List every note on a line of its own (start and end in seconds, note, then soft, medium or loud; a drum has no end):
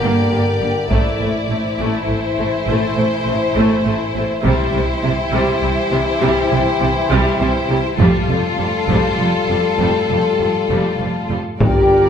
0.00 0.10 G1 medium
0.00 0.10 G2 soft
0.00 0.87 D3 soft
0.00 0.30 A#3 soft
0.00 0.87 G4 soft
0.00 0.87 A#4 soft
0.00 2.04 D5 soft
0.31 0.39 G1 soft
0.31 0.40 G2 soft
0.31 0.40 A#3 soft
0.61 0.69 G1 soft
0.61 0.70 G2 soft
0.61 0.69 A#3 soft
0.89 0.98 A1 medium
0.89 0.99 A2 soft
0.89 4.39 E3 medium
0.89 1.18 A3 soft
0.89 4.40 E4 soft
0.89 4.39 C5 soft
0.89 taiko medium
1.20 1.28 A1 soft
1.20 1.29 A2 soft
1.20 1.29 A3 soft
1.49 1.57 A1 soft
1.49 1.57 A2 soft
1.49 1.58 A3 soft
1.79 1.87 A1 medium
1.79 1.87 A2 medium
1.79 2.06 A3 medium
2.08 2.16 A1 soft
2.08 2.16 A2 soft
2.08 2.17 A3 soft
2.08 4.42 C5 soft
2.38 2.46 A1 soft
2.38 2.46 A2 soft
2.38 2.46 A3 medium
2.67 2.75 A1 medium
2.67 2.75 A2 medium
2.67 2.95 A3 medium
2.97 3.05 A1 soft
2.97 3.05 A2 soft
2.97 3.05 A3 soft
3.27 3.35 A1 soft
3.27 3.35 A2 soft
3.27 3.35 A3 soft
3.56 3.64 A1 medium
3.56 3.64 A2 medium
3.56 3.83 A3 medium
3.85 3.93 A1 soft
3.85 3.93 A2 soft
3.85 3.94 A3 soft
4.15 4.23 A1 soft
4.15 4.23 A2 soft
4.15 4.24 A3 soft
4.43 4.52 C2 medium
4.43 4.52 C3 medium
4.43 7.82 E3 medium
4.43 4.72 G3 medium
4.43 7.95 E4 medium
4.43 7.82 G4 medium
4.43 7.95 C5 soft
4.43 taiko soft
4.73 4.82 C2 soft
4.73 4.81 C3 soft
4.73 4.82 G3 soft
5.03 5.11 C2 soft
5.03 5.11 C3 soft
5.03 5.12 G3 soft
5.32 5.40 C2 medium
5.32 5.41 C3 medium
5.32 5.61 G3 medium
5.62 5.70 C2 soft
5.62 5.70 C3 soft
5.62 5.70 G3 soft
5.91 5.99 C2 soft
5.91 6.00 C3 soft
5.91 5.99 G3 medium
6.21 6.29 C2 medium
6.21 6.29 C3 medium
6.21 6.49 G3 medium
6.51 6.59 C2 soft
6.51 6.59 C3 soft
6.51 6.59 G3 soft
6.80 6.89 C2 soft
6.80 6.88 C3 soft
6.80 6.88 G3 soft
7.10 7.19 C2 medium
7.10 7.18 C3 medium
7.10 7.38 G3 medium
7.40 7.48 C2 medium
7.40 7.48 C3 soft
7.40 7.48 G3 medium
7.70 7.78 C2 soft
7.70 7.78 C3 soft
7.70 7.78 G3 medium
7.98 8.07 F1 medium
7.98 8.07 F2 medium
7.98 11.27 G3 medium
7.98 8.27 G3 medium
7.98 11.37 F4 medium
7.98 11.40 A4 medium
7.98 11.27 A4 medium
7.98 taiko medium
8.29 8.37 F1 soft
8.29 8.37 F2 soft
8.29 8.38 G3 soft
8.59 8.67 F1 soft
8.59 8.67 F2 soft
8.59 8.67 G3 soft
8.88 8.97 F1 medium
8.88 8.96 F2 medium
8.88 9.17 G3 medium
8.88 taiko soft
9.18 9.26 F1 soft
9.18 9.27 F2 soft
9.18 9.27 G3 soft
9.49 9.57 F1 soft
9.49 9.57 F2 soft
9.49 9.58 G3 soft
9.79 9.87 F1 medium
9.79 9.88 F2 medium
9.79 10.08 G3 soft
10.10 10.18 F1 soft
10.10 10.18 F2 soft
10.10 10.20 G3 soft
10.40 10.48 F1 soft
10.40 10.48 F2 soft
10.40 10.49 G3 soft
10.70 10.78 F1 medium
10.70 10.78 F2 soft
10.70 10.99 G3 soft
11.00 11.08 F1 soft
11.00 11.08 F2 soft
11.00 11.09 G3 soft
11.30 11.38 F1 soft
11.30 11.38 F2 soft
11.30 11.38 G3 soft
11.60 12.09 G1 medium
11.60 12.09 G1 soft
11.60 12.09 G2 soft
11.60 12.09 G4 soft
11.60 12.09 G4 medium
11.60 12.09 A#4 medium
11.60 12.09 D5 soft
11.60 taiko medium